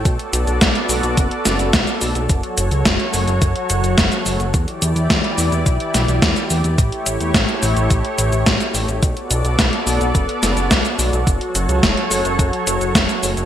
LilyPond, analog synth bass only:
\new Staff \with { instrumentName = "Analog synth bass" } { \clef bass \time 4/4 \key b \minor \tempo 4 = 107 b,,16 r16 b,,16 b,,16 b,,16 r16 b,,16 b,,16 fis,,16 r16 fis,,16 fis,,16 b,,16 r16 b,,16 b,,16 | fis,,16 r16 fis,,16 cis,16 fis,,16 r16 fis,,16 fis,,16 fis,,16 r16 fis,,16 fis,,16 fis,,16 r16 fis,,16 fis,,16 | e,16 r16 e,16 e,16 e,16 r16 e,16 e,16 b,,16 r16 b,,16 b,,16 e,16 r16 e,16 e,16 | a,,16 r16 a,,16 e,16 a,,16 r16 a,,16 a,,16 a,,16 r16 a,,16 a,,16 a,,16 r16 a,,16 a,,16 |
b,,16 r16 b,,16 b,,16 b,,16 r16 b,,16 b,,16 fis,,16 r16 fis,,16 fis,,16 b,,16 r16 b,,16 b,,16 | fis,,16 r16 fis,,16 cis,16 fis,,16 r16 fis,,16 fis,,16 fis,,16 r16 fis,,16 fis,,16 fis,,16 r16 fis,,16 fis,,16 | }